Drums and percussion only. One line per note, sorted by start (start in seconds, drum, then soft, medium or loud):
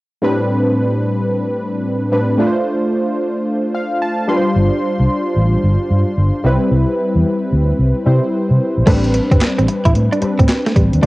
8.87 kick loud
8.87 closed hi-hat medium
8.87 crash medium
9.04 closed hi-hat medium
9.14 closed hi-hat medium
9.31 kick medium
9.31 closed hi-hat medium
9.41 snare loud
9.41 clap medium
9.41 closed hi-hat medium
9.59 closed hi-hat medium
9.68 closed hi-hat medium
9.85 kick medium
9.85 closed hi-hat medium
9.95 closed hi-hat medium
10.13 closed hi-hat soft
10.22 closed hi-hat medium
10.39 kick medium
10.39 closed hi-hat medium
10.49 snare loud
10.49 clap medium
10.49 closed hi-hat medium
10.66 snare medium
10.66 closed hi-hat medium
10.76 kick medium
10.76 closed hi-hat medium
10.93 closed hi-hat soft